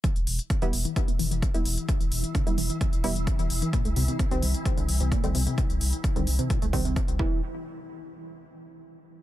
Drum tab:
HH |xxoxxxoxxxoxxxox|xxoxxxoxxxoxxxox|xxoxxxoxxxoxxxox|xxoxxxoxxxoxxx--|
BD |o---o---o---o---|o---o---o---o---|o---o---o---o---|o---o---o-o-o-o-|

HH |----------------|
BD |----------------|